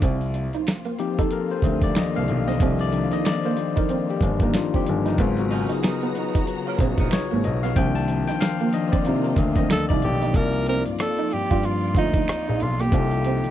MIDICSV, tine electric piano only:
0, 0, Header, 1, 2, 480
1, 0, Start_track
1, 0, Tempo, 645161
1, 16, Time_signature, 4, 2, 24, 8
1, 10048, End_track
2, 0, Start_track
2, 0, Title_t, "Tine electric piano"
2, 0, Program_c, 0, 4
2, 0, Control_c, 0, 64, 127
2, 24, Control_c, 0, 64, 0
2, 151, Control_c, 0, 64, 127
2, 737, Note_on_c, 0, 63, 55
2, 741, Note_on_c, 0, 53, 49
2, 741, Note_on_c, 0, 67, 84
2, 743, Note_on_c, 0, 58, 48
2, 745, Note_on_c, 0, 60, 57
2, 882, Note_on_c, 0, 69, 85
2, 883, Note_off_c, 0, 67, 0
2, 972, Note_off_c, 0, 69, 0
2, 986, Note_on_c, 0, 70, 88
2, 1112, Note_off_c, 0, 70, 0
2, 1126, Note_on_c, 0, 72, 82
2, 1366, Note_on_c, 0, 74, 95
2, 1369, Note_off_c, 0, 72, 0
2, 1459, Note_off_c, 0, 58, 0
2, 1460, Note_off_c, 0, 53, 0
2, 1463, Note_off_c, 0, 74, 0
2, 1464, Note_on_c, 0, 51, 49
2, 1468, Note_on_c, 0, 58, 45
2, 1469, Note_on_c, 0, 53, 44
2, 1469, Note_on_c, 0, 75, 96
2, 1470, Note_on_c, 0, 62, 52
2, 1607, Note_off_c, 0, 75, 0
2, 1609, Note_on_c, 0, 77, 96
2, 1677, Note_off_c, 0, 51, 0
2, 1679, Note_off_c, 0, 53, 0
2, 1679, Note_off_c, 0, 58, 0
2, 1680, Note_off_c, 0, 62, 0
2, 1844, Note_on_c, 0, 75, 86
2, 1850, Note_off_c, 0, 77, 0
2, 2088, Note_off_c, 0, 75, 0
2, 2088, Note_on_c, 0, 74, 90
2, 2176, Note_on_c, 0, 51, 54
2, 2179, Note_on_c, 0, 53, 49
2, 2182, Note_on_c, 0, 58, 50
2, 2184, Note_on_c, 0, 62, 59
2, 2306, Note_off_c, 0, 74, 0
2, 2327, Note_on_c, 0, 75, 88
2, 2424, Note_off_c, 0, 75, 0
2, 2424, Note_on_c, 0, 74, 96
2, 2551, Note_off_c, 0, 74, 0
2, 2571, Note_on_c, 0, 72, 79
2, 2627, Note_off_c, 0, 63, 0
2, 2630, Note_off_c, 0, 60, 0
2, 2788, Note_off_c, 0, 72, 0
2, 2813, Note_on_c, 0, 70, 85
2, 3029, Note_off_c, 0, 70, 0
2, 3052, Note_on_c, 0, 67, 82
2, 3291, Note_off_c, 0, 67, 0
2, 3294, Note_on_c, 0, 63, 83
2, 3377, Note_off_c, 0, 51, 0
2, 3377, Note_off_c, 0, 53, 0
2, 3379, Note_off_c, 0, 58, 0
2, 3381, Note_off_c, 0, 62, 0
2, 3386, Note_on_c, 0, 51, 49
2, 3386, Note_on_c, 0, 53, 49
2, 3387, Note_off_c, 0, 63, 0
2, 3388, Note_on_c, 0, 58, 47
2, 3390, Note_on_c, 0, 62, 57
2, 3395, Note_on_c, 0, 65, 91
2, 3530, Note_off_c, 0, 65, 0
2, 3539, Note_on_c, 0, 67, 82
2, 3598, Note_off_c, 0, 51, 0
2, 3598, Note_off_c, 0, 53, 0
2, 3599, Note_off_c, 0, 58, 0
2, 3600, Note_off_c, 0, 62, 0
2, 3752, Note_off_c, 0, 67, 0
2, 3775, Note_on_c, 0, 63, 76
2, 3859, Note_on_c, 0, 49, 57
2, 3863, Note_on_c, 0, 54, 52
2, 3864, Control_c, 0, 64, 0
2, 3865, Note_on_c, 0, 70, 51
2, 3867, Note_on_c, 0, 59, 65
2, 3868, Note_off_c, 0, 63, 0
2, 3875, Note_on_c, 0, 65, 84
2, 3979, Control_c, 0, 64, 127
2, 4010, Note_off_c, 0, 65, 0
2, 4016, Note_on_c, 0, 66, 78
2, 4253, Note_off_c, 0, 66, 0
2, 4260, Note_on_c, 0, 68, 82
2, 4495, Note_off_c, 0, 68, 0
2, 4501, Note_on_c, 0, 71, 66
2, 4713, Note_off_c, 0, 71, 0
2, 5301, Note_on_c, 0, 73, 94
2, 5542, Note_on_c, 0, 75, 87
2, 5546, Note_off_c, 0, 73, 0
2, 5677, Note_on_c, 0, 77, 89
2, 5684, Note_off_c, 0, 75, 0
2, 5748, Note_off_c, 0, 49, 0
2, 5750, Note_off_c, 0, 54, 0
2, 5751, Note_off_c, 0, 70, 0
2, 5752, Note_off_c, 0, 59, 0
2, 5777, Note_on_c, 0, 79, 107
2, 5779, Note_off_c, 0, 77, 0
2, 5779, Note_on_c, 0, 51, 58
2, 5780, Note_on_c, 0, 53, 50
2, 5782, Note_on_c, 0, 58, 53
2, 5784, Control_c, 0, 64, 0
2, 5786, Note_on_c, 0, 62, 63
2, 5901, Control_c, 0, 64, 127
2, 5918, Note_on_c, 0, 81, 92
2, 5921, Note_off_c, 0, 79, 0
2, 6112, Note_off_c, 0, 51, 0
2, 6113, Note_off_c, 0, 53, 0
2, 6114, Note_off_c, 0, 58, 0
2, 6117, Note_off_c, 0, 62, 0
2, 6156, Note_on_c, 0, 79, 97
2, 6164, Note_off_c, 0, 81, 0
2, 6253, Note_on_c, 0, 77, 100
2, 6259, Note_off_c, 0, 79, 0
2, 6478, Note_off_c, 0, 77, 0
2, 6500, Note_on_c, 0, 75, 94
2, 6503, Note_on_c, 0, 51, 52
2, 6506, Note_on_c, 0, 53, 47
2, 6508, Note_on_c, 0, 58, 46
2, 6510, Note_on_c, 0, 62, 56
2, 6637, Note_on_c, 0, 74, 89
2, 6643, Note_off_c, 0, 75, 0
2, 6716, Note_off_c, 0, 51, 0
2, 6718, Note_off_c, 0, 53, 0
2, 6718, Note_off_c, 0, 58, 0
2, 6720, Note_off_c, 0, 62, 0
2, 6860, Note_off_c, 0, 74, 0
2, 6870, Note_on_c, 0, 70, 81
2, 7116, Note_on_c, 0, 75, 83
2, 7121, Note_off_c, 0, 70, 0
2, 7357, Note_on_c, 0, 74, 81
2, 7363, Note_off_c, 0, 75, 0
2, 7672, Note_off_c, 0, 74, 0
2, 7677, Note_on_c, 0, 60, 63
2, 7689, Note_on_c, 0, 58, 56
2, 7703, Note_on_c, 0, 63, 59
2, 7705, Control_c, 0, 64, 0
2, 7716, Note_on_c, 0, 65, 57
2, 7730, Note_on_c, 0, 74, 67
2, 7851, Control_c, 0, 64, 127
2, 9577, Note_off_c, 0, 60, 0
2, 9583, Note_off_c, 0, 58, 0
2, 9590, Note_off_c, 0, 63, 0
2, 9596, Note_off_c, 0, 65, 0
2, 9596, Note_on_c, 0, 48, 61
2, 9603, Note_off_c, 0, 74, 0
2, 9609, Note_on_c, 0, 58, 61
2, 9625, Note_on_c, 0, 63, 59
2, 9637, Note_on_c, 0, 65, 56
2, 9649, Note_on_c, 0, 69, 67
2, 10048, Note_off_c, 0, 48, 0
2, 10048, Note_off_c, 0, 58, 0
2, 10048, Note_off_c, 0, 63, 0
2, 10048, Note_off_c, 0, 65, 0
2, 10048, Note_off_c, 0, 69, 0
2, 10048, End_track
0, 0, End_of_file